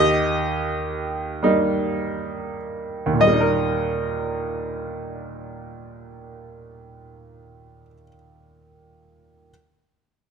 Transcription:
0.00 3.05 D#2 medium
0.00 2.55 G4 medium
0.00 2.55 D#5 loud
1.43 3.18 G3 soft
1.43 3.18 A#3 soft
1.43 3.18 D#4 medium
3.06 7.80 D#2 soft
3.13 7.87 A#2 soft
3.20 7.94 G3 soft
3.20 7.95 D#5 medium
3.27 8.01 A#3 soft
3.33 8.07 D#4 soft
3.40 8.14 A#4 soft

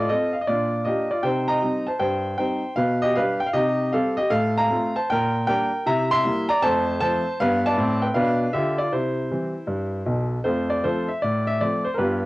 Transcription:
0.00 0.11 A2 medium
0.00 0.10 F4 medium
0.00 0.10 A4 medium
0.00 0.11 D5 medium
0.00 0.09 D#5 medium
0.09 0.31 C4 soft
0.09 0.31 F4 soft
0.09 0.33 A4 medium
0.09 0.34 D#5 medium
0.33 0.40 F5 medium
0.41 0.48 D#5 medium
0.47 0.81 A#2 medium
0.47 0.70 D4 soft
0.47 0.84 F4 medium
0.47 0.86 D5 medium
0.85 1.07 A#3 soft
0.85 1.07 D4 soft
0.85 1.07 F4 soft
0.85 1.10 G4 medium
0.85 1.11 D#5 medium
1.11 1.24 F4 medium
1.11 1.24 D5 medium
1.23 1.56 C3 medium
1.23 1.46 D#4 soft
1.23 1.48 C5 medium
1.23 1.49 G5 medium
1.48 1.85 D#5 medium
1.48 1.87 A#5 medium
1.62 1.84 G3 soft
1.62 1.84 C4 soft
1.62 1.84 D#4 medium
1.86 1.98 C5 medium
1.86 2.01 A5 medium
1.99 2.33 G2 medium
1.99 2.36 C5 medium
1.99 2.36 G5 medium
2.38 2.60 G3 soft
2.38 2.60 C4 soft
2.38 2.60 D#4 soft
2.38 2.75 C5 medium
2.38 2.77 G5 medium
2.76 3.10 B2 medium
2.76 3.01 B4 medium
2.76 3.02 F5 medium
3.02 3.16 G4 medium
3.02 3.16 D#5 medium
3.15 3.38 G3 soft
3.15 3.38 D4 soft
3.15 3.38 G4 soft
3.15 3.40 B4 medium
3.15 3.41 F5 medium
3.40 3.48 G5 medium
3.46 3.54 F5 medium
3.53 3.87 C3 medium
3.53 3.76 D#4 soft
3.53 3.90 G4 medium
3.53 3.93 D#5 medium
3.93 4.14 G3 soft
3.93 4.15 C4 soft
3.93 4.15 G4 medium
3.93 4.17 A4 medium
3.93 4.18 F5 medium
4.17 4.31 G4 medium
4.17 4.31 D#5 medium
4.30 4.64 A2 medium
4.30 4.54 A4 medium
4.30 4.56 F5 loud
4.58 4.94 F5 medium
4.58 4.96 A#5 loud
4.70 4.91 A3 soft
4.70 4.91 C4 soft
4.70 4.92 F4 medium
4.96 5.08 C5 medium
4.96 5.09 A5 medium
5.10 5.43 A#2 medium
5.10 5.46 A#4 medium
5.10 5.46 G5 loud
5.47 5.69 G3 soft
5.47 5.69 A#3 soft
5.47 5.69 D4 medium
5.47 5.84 A#4 medium
5.47 5.86 G5 loud
5.86 6.18 C3 medium
5.86 6.09 E4 soft
5.86 6.10 E5 medium
5.86 6.11 A#5 loud
6.11 6.47 E5 medium
6.11 6.49 C6 loud
6.24 6.45 G3 soft
6.24 6.46 A#3 medium
6.24 6.46 E4 medium
6.49 6.62 D5 medium
6.49 6.62 A#5 loud
6.62 6.95 F2 medium
6.62 6.85 A3 medium
6.62 6.99 C5 medium
6.62 6.99 A5 loud
7.01 7.22 F3 soft
7.01 7.22 A3 soft
7.01 7.23 C4 medium
7.01 7.37 C5 medium
7.01 7.39 A5 loud
7.40 7.70 G2 medium
7.40 7.72 B3 medium
7.40 7.64 B4 medium
7.40 7.65 F5 loud
7.66 8.01 D5 medium
7.66 8.03 A5 loud
7.77 8.08 A2 medium
7.77 8.09 C4 medium
8.02 8.14 B4 medium
8.02 8.15 G5 medium
8.14 8.46 B2 medium
8.14 8.47 D4 medium
8.14 8.51 B4 medium
8.14 8.53 F5 loud
8.53 8.84 D3 medium
8.53 8.78 F4 medium
8.53 8.78 G4 medium
8.53 8.79 E5 medium
8.78 8.92 F4 medium
8.78 8.92 D5 medium
8.92 9.25 C3 medium
8.92 10.29 E4 medium
8.92 10.33 C5 medium
9.31 9.52 E3 soft
9.31 9.52 G3 soft
9.31 9.53 C4 soft
9.67 10.01 G2 medium
10.06 10.37 B1 medium
10.06 10.37 B2 medium
10.44 10.78 F2 medium
10.44 10.67 A3 soft
10.44 10.69 F4 medium
10.44 10.69 A4 medium
10.44 10.70 C5 medium
10.70 10.84 D5 medium
10.84 11.05 F3 soft
10.84 11.06 A3 soft
10.84 11.06 C4 soft
10.84 11.08 F4 medium
10.84 11.08 A4 medium
10.84 11.09 C5 medium
11.08 11.22 E5 medium
11.22 11.56 A2 medium
11.22 11.48 D5 medium
11.47 11.61 E5 medium
11.61 11.82 F3 soft
11.61 11.83 A3 soft
11.61 11.83 C4 soft
11.61 11.86 D5 medium
11.85 11.94 C5 medium
11.94 12.26 G2 medium
11.94 11.99 A#4 medium
11.94 12.26 B4 medium
11.99 12.22 B3 soft
11.99 12.26 F4 medium
11.99 12.26 G4 medium

